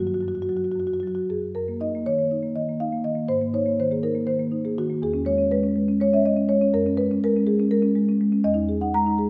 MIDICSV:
0, 0, Header, 1, 2, 480
1, 0, Start_track
1, 0, Key_signature, 6, "major"
1, 0, Tempo, 511509
1, 1435, Time_signature, 7, 3, 24, 8
1, 2615, Tempo, 490196
1, 8990, End_track
2, 0, Start_track
2, 0, Title_t, "Marimba"
2, 0, Program_c, 0, 12
2, 0, Note_on_c, 0, 42, 45
2, 0, Note_on_c, 0, 51, 34
2, 0, Note_on_c, 0, 54, 38
2, 0, Note_on_c, 0, 58, 35
2, 0, Note_on_c, 0, 66, 51
2, 66, Note_off_c, 0, 66, 0
2, 66, Note_on_c, 0, 66, 48
2, 133, Note_off_c, 0, 66, 0
2, 133, Note_on_c, 0, 66, 52
2, 193, Note_off_c, 0, 66, 0
2, 193, Note_on_c, 0, 66, 48
2, 199, Note_off_c, 0, 42, 0
2, 211, Note_on_c, 0, 42, 40
2, 264, Note_off_c, 0, 66, 0
2, 264, Note_on_c, 0, 66, 54
2, 328, Note_off_c, 0, 66, 0
2, 328, Note_on_c, 0, 66, 46
2, 395, Note_off_c, 0, 66, 0
2, 395, Note_on_c, 0, 66, 52
2, 449, Note_off_c, 0, 54, 0
2, 460, Note_on_c, 0, 54, 39
2, 461, Note_off_c, 0, 66, 0
2, 461, Note_on_c, 0, 66, 47
2, 533, Note_off_c, 0, 66, 0
2, 533, Note_on_c, 0, 66, 51
2, 604, Note_off_c, 0, 66, 0
2, 604, Note_on_c, 0, 66, 48
2, 672, Note_off_c, 0, 66, 0
2, 672, Note_on_c, 0, 66, 53
2, 699, Note_off_c, 0, 42, 0
2, 711, Note_on_c, 0, 42, 38
2, 747, Note_off_c, 0, 66, 0
2, 747, Note_on_c, 0, 66, 51
2, 817, Note_off_c, 0, 66, 0
2, 817, Note_on_c, 0, 66, 52
2, 877, Note_off_c, 0, 66, 0
2, 877, Note_on_c, 0, 66, 48
2, 939, Note_off_c, 0, 66, 0
2, 939, Note_on_c, 0, 66, 51
2, 956, Note_off_c, 0, 54, 0
2, 967, Note_on_c, 0, 54, 39
2, 1008, Note_off_c, 0, 66, 0
2, 1008, Note_on_c, 0, 66, 47
2, 1077, Note_off_c, 0, 66, 0
2, 1077, Note_on_c, 0, 66, 51
2, 1154, Note_off_c, 0, 66, 0
2, 1206, Note_off_c, 0, 42, 0
2, 1217, Note_on_c, 0, 42, 37
2, 1220, Note_on_c, 0, 68, 55
2, 1395, Note_off_c, 0, 51, 0
2, 1397, Note_off_c, 0, 58, 0
2, 1430, Note_off_c, 0, 54, 0
2, 1439, Note_off_c, 0, 68, 0
2, 1440, Note_off_c, 0, 42, 0
2, 1453, Note_on_c, 0, 70, 60
2, 1461, Note_on_c, 0, 42, 52
2, 1579, Note_on_c, 0, 58, 39
2, 1672, Note_off_c, 0, 70, 0
2, 1692, Note_on_c, 0, 63, 38
2, 1698, Note_on_c, 0, 75, 64
2, 1756, Note_off_c, 0, 58, 0
2, 1830, Note_on_c, 0, 58, 38
2, 1872, Note_off_c, 0, 63, 0
2, 1913, Note_off_c, 0, 75, 0
2, 1936, Note_on_c, 0, 73, 68
2, 1937, Note_on_c, 0, 51, 41
2, 2000, Note_off_c, 0, 58, 0
2, 2050, Note_on_c, 0, 58, 35
2, 2112, Note_off_c, 0, 51, 0
2, 2170, Note_on_c, 0, 63, 37
2, 2228, Note_off_c, 0, 58, 0
2, 2279, Note_on_c, 0, 58, 35
2, 2346, Note_off_c, 0, 63, 0
2, 2376, Note_off_c, 0, 73, 0
2, 2398, Note_on_c, 0, 75, 59
2, 2403, Note_on_c, 0, 51, 35
2, 2459, Note_off_c, 0, 58, 0
2, 2522, Note_on_c, 0, 58, 38
2, 2579, Note_off_c, 0, 51, 0
2, 2615, Note_off_c, 0, 75, 0
2, 2629, Note_on_c, 0, 63, 40
2, 2630, Note_on_c, 0, 77, 64
2, 2701, Note_off_c, 0, 58, 0
2, 2750, Note_on_c, 0, 58, 39
2, 2816, Note_off_c, 0, 63, 0
2, 2856, Note_off_c, 0, 77, 0
2, 2866, Note_on_c, 0, 75, 63
2, 2871, Note_on_c, 0, 51, 37
2, 2937, Note_off_c, 0, 58, 0
2, 2975, Note_on_c, 0, 58, 41
2, 3058, Note_off_c, 0, 51, 0
2, 3074, Note_off_c, 0, 42, 0
2, 3094, Note_off_c, 0, 75, 0
2, 3098, Note_off_c, 0, 58, 0
2, 3103, Note_on_c, 0, 72, 71
2, 3107, Note_on_c, 0, 44, 50
2, 3232, Note_on_c, 0, 58, 44
2, 3333, Note_off_c, 0, 72, 0
2, 3345, Note_on_c, 0, 63, 40
2, 3353, Note_on_c, 0, 73, 66
2, 3420, Note_off_c, 0, 58, 0
2, 3470, Note_on_c, 0, 58, 40
2, 3536, Note_off_c, 0, 63, 0
2, 3579, Note_off_c, 0, 73, 0
2, 3605, Note_on_c, 0, 72, 69
2, 3606, Note_on_c, 0, 51, 42
2, 3659, Note_off_c, 0, 58, 0
2, 3714, Note_off_c, 0, 72, 0
2, 3717, Note_on_c, 0, 58, 39
2, 3721, Note_on_c, 0, 68, 43
2, 3787, Note_off_c, 0, 51, 0
2, 3831, Note_on_c, 0, 63, 41
2, 3832, Note_off_c, 0, 68, 0
2, 3835, Note_on_c, 0, 70, 61
2, 3903, Note_off_c, 0, 58, 0
2, 3949, Note_on_c, 0, 58, 43
2, 4020, Note_off_c, 0, 63, 0
2, 4061, Note_off_c, 0, 70, 0
2, 4066, Note_on_c, 0, 72, 65
2, 4067, Note_on_c, 0, 51, 38
2, 4140, Note_off_c, 0, 58, 0
2, 4190, Note_on_c, 0, 58, 44
2, 4259, Note_off_c, 0, 51, 0
2, 4309, Note_on_c, 0, 63, 41
2, 4381, Note_off_c, 0, 58, 0
2, 4413, Note_off_c, 0, 72, 0
2, 4436, Note_on_c, 0, 58, 39
2, 4440, Note_on_c, 0, 68, 47
2, 4501, Note_off_c, 0, 63, 0
2, 4555, Note_off_c, 0, 68, 0
2, 4570, Note_on_c, 0, 51, 42
2, 4570, Note_on_c, 0, 66, 68
2, 4625, Note_off_c, 0, 58, 0
2, 4683, Note_on_c, 0, 58, 42
2, 4753, Note_off_c, 0, 51, 0
2, 4755, Note_off_c, 0, 44, 0
2, 4792, Note_off_c, 0, 66, 0
2, 4797, Note_off_c, 0, 58, 0
2, 4804, Note_on_c, 0, 40, 57
2, 4812, Note_on_c, 0, 68, 64
2, 4915, Note_on_c, 0, 61, 47
2, 5028, Note_on_c, 0, 56, 41
2, 5032, Note_off_c, 0, 68, 0
2, 5039, Note_on_c, 0, 73, 72
2, 5104, Note_off_c, 0, 61, 0
2, 5157, Note_on_c, 0, 61, 40
2, 5220, Note_off_c, 0, 56, 0
2, 5263, Note_off_c, 0, 73, 0
2, 5286, Note_on_c, 0, 71, 74
2, 5295, Note_on_c, 0, 56, 46
2, 5344, Note_off_c, 0, 61, 0
2, 5402, Note_on_c, 0, 61, 39
2, 5472, Note_off_c, 0, 56, 0
2, 5523, Note_on_c, 0, 56, 46
2, 5586, Note_off_c, 0, 61, 0
2, 5647, Note_on_c, 0, 61, 45
2, 5706, Note_off_c, 0, 56, 0
2, 5735, Note_off_c, 0, 71, 0
2, 5766, Note_on_c, 0, 56, 45
2, 5774, Note_on_c, 0, 73, 75
2, 5828, Note_off_c, 0, 61, 0
2, 5879, Note_off_c, 0, 73, 0
2, 5893, Note_on_c, 0, 61, 47
2, 5896, Note_on_c, 0, 76, 61
2, 5947, Note_off_c, 0, 56, 0
2, 5999, Note_off_c, 0, 76, 0
2, 6008, Note_on_c, 0, 56, 43
2, 6011, Note_on_c, 0, 75, 70
2, 6070, Note_off_c, 0, 61, 0
2, 6118, Note_on_c, 0, 61, 42
2, 6187, Note_off_c, 0, 56, 0
2, 6227, Note_off_c, 0, 75, 0
2, 6239, Note_on_c, 0, 56, 44
2, 6239, Note_on_c, 0, 73, 72
2, 6302, Note_off_c, 0, 61, 0
2, 6362, Note_on_c, 0, 61, 47
2, 6422, Note_off_c, 0, 56, 0
2, 6430, Note_off_c, 0, 40, 0
2, 6461, Note_off_c, 0, 73, 0
2, 6471, Note_off_c, 0, 61, 0
2, 6482, Note_on_c, 0, 42, 61
2, 6484, Note_on_c, 0, 70, 76
2, 6608, Note_on_c, 0, 61, 50
2, 6703, Note_off_c, 0, 70, 0
2, 6712, Note_on_c, 0, 56, 48
2, 6715, Note_on_c, 0, 71, 73
2, 6786, Note_off_c, 0, 61, 0
2, 6851, Note_on_c, 0, 61, 47
2, 6897, Note_off_c, 0, 56, 0
2, 6937, Note_off_c, 0, 71, 0
2, 6973, Note_on_c, 0, 70, 84
2, 6975, Note_on_c, 0, 56, 49
2, 7026, Note_off_c, 0, 61, 0
2, 7099, Note_on_c, 0, 61, 44
2, 7148, Note_off_c, 0, 56, 0
2, 7185, Note_off_c, 0, 70, 0
2, 7198, Note_on_c, 0, 68, 72
2, 7199, Note_on_c, 0, 56, 45
2, 7269, Note_off_c, 0, 61, 0
2, 7324, Note_on_c, 0, 61, 48
2, 7379, Note_off_c, 0, 56, 0
2, 7416, Note_off_c, 0, 68, 0
2, 7436, Note_on_c, 0, 70, 73
2, 7437, Note_on_c, 0, 56, 49
2, 7501, Note_off_c, 0, 61, 0
2, 7546, Note_on_c, 0, 61, 52
2, 7618, Note_off_c, 0, 56, 0
2, 7677, Note_on_c, 0, 56, 48
2, 7733, Note_off_c, 0, 61, 0
2, 7804, Note_on_c, 0, 61, 49
2, 7858, Note_off_c, 0, 56, 0
2, 7886, Note_off_c, 0, 70, 0
2, 7923, Note_on_c, 0, 56, 48
2, 7982, Note_off_c, 0, 61, 0
2, 8037, Note_on_c, 0, 61, 45
2, 8101, Note_off_c, 0, 56, 0
2, 8106, Note_off_c, 0, 42, 0
2, 8146, Note_off_c, 0, 61, 0
2, 8151, Note_on_c, 0, 40, 64
2, 8154, Note_on_c, 0, 75, 86
2, 8250, Note_on_c, 0, 63, 51
2, 8392, Note_on_c, 0, 68, 50
2, 8445, Note_off_c, 0, 63, 0
2, 8490, Note_off_c, 0, 75, 0
2, 8516, Note_on_c, 0, 78, 62
2, 8520, Note_on_c, 0, 63, 45
2, 8576, Note_off_c, 0, 68, 0
2, 8626, Note_off_c, 0, 78, 0
2, 8644, Note_on_c, 0, 82, 88
2, 8647, Note_on_c, 0, 56, 50
2, 8700, Note_off_c, 0, 63, 0
2, 8761, Note_on_c, 0, 63, 49
2, 8824, Note_off_c, 0, 56, 0
2, 8881, Note_on_c, 0, 68, 52
2, 8942, Note_off_c, 0, 63, 0
2, 8990, Note_off_c, 0, 40, 0
2, 8990, Note_off_c, 0, 68, 0
2, 8990, Note_off_c, 0, 82, 0
2, 8990, End_track
0, 0, End_of_file